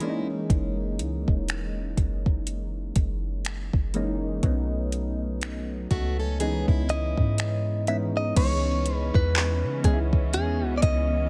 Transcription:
Already playing: steel-string acoustic guitar G#3 E4
0.00 synth keys E3 G#3 A#3 C#4 D4, closed hi-hat
0.09 synth keys D#4
0.50 808-style bass F#1, kick, closed hi-hat
0.99 808-style bass C#2, closed hi-hat
1.28 808-style bass E1, kick
1.49 finger snap, closed hi-hat
1.97 808-style bass F#1, kick, closed hi-hat
2.26 kick
2.47 closed hi-hat
2.96 808-style bass F#1, kick, closed hi-hat
3.45 finger snap, closed hi-hat
3.73 808-style bass F#1, kick
3.94 synth keys E3 G#3 A#3 C#4 D#4, closed hi-hat
4.43 808-style bass B1, synth keys F#3 A3 B3 C#4 D#4, kick, closed hi-hat
4.92 closed hi-hat
5.41 finger snap, closed hi-hat
5.91 808-style bass C#2, steel-string acoustic guitar A3 F#4, kick, closed hi-hat
6.20 steel-string acoustic guitar C#4 A4
6.39 synth keys E3 G#3 B3 C#4 D#4, steel-string acoustic guitar B3 G#4, closed hi-hat
6.68 808-style bass C#2, steel-string acoustic guitar G#3 E4, kick
6.89 clean electric guitar D#5, closed hi-hat
7.17 808-style bass G#2, kick
7.38 finger snap, closed hi-hat
7.87 synth keys E3 G#3 B3 C#4 D#4, clean electric guitar E5, closed hi-hat
8.17 clean electric guitar D#5
8.36 808-style bass C#2, synth keys D#3 G#3 B3 C#4 D#4, string section E3 B3 C#4, clean electric guitar C#5, celesta C#6, kick, closed hi-hat, crash
8.43 synth keys E3
8.86 closed hi-hat
8.96 clean electric guitar B4
9.15 808-style bass E2, clean electric guitar B4, kick
9.35 clap, closed hi-hat
9.64 808-style bass C#3
9.84 808-style bass C#2, synth keys E3 G#3 B3 C#4 D#4, clean electric guitar G#4, kick, closed hi-hat
9.93 synth keys E4
10.13 kick
10.33 808-style bass E2, clean electric guitar G#4, closed hi-hat
10.62 808-style bass C#2
10.77 clean electric guitar D5
10.82 808-style bass C#2, clean electric guitar D#5, kick, closed hi-hat

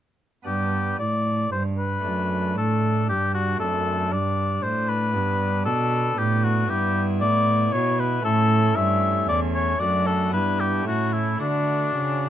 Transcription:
0.43 cello G2, pipe organ B3 D4, oboe G4
0.48 pipe organ G2
0.99 cello A2, pipe organ A2, oboe D5
1.52 cello G2, pipe organ G2, oboe C5
1.78 oboe B4
2.00 pipe organ A3 D4
2.04 cello F#2, pipe organ F#2
2.56 cello A2, pipe organ A2, oboe A4
3.09 pipe organ G2, cello G2, oboe G4
3.34 oboe F#4
3.56 pipe organ A3 C4 D4
3.60 pipe organ F#2, cello F#2, oboe A4
4.12 cello G2, pipe organ G2, oboe D5
4.63 cello A2, pipe organ A2, oboe C5
4.89 oboe B4
5.12 pipe organ G2 B3 D4, cello G2
5.65 pipe organ B2, cello B2, oboe A4
6.17 cello A2, pipe organ A2, oboe G4
6.43 oboe F#4
6.65 pipe organ B3 E4
6.69 cello G2, pipe organ G2, oboe G4
7.21 cello A2, pipe organ A2, oboe D5
7.73 pipe organ B2, cello B2, oboe C#5
7.99 oboe B4
8.21 pipe organ A3 C#4 E4, oboe A4
8.25 cello A2, pipe organ A2
8.76 pipe organ G2, cello G2, oboe E5
9.28 cello E2, pipe organ E2, oboe D5
9.55 oboe C#5
9.78 cello F#2, pipe organ A3 D4 F#4, oboe D5
9.82 pipe organ F#2
10.06 oboe A4
10.29 cello G2, pipe organ B3 D4 E4, oboe B4
10.34 pipe organ G2
10.60 oboe G4
10.82 pipe organ A3 C#4 E4
10.86 pipe organ A2, cello A2, oboe F#4
11.13 oboe E4
11.36 cello D3, pipe organ A3 D4 F#4, oboe D4
11.41 pipe organ D3
11.95 cello C#3, pipe organ C#3

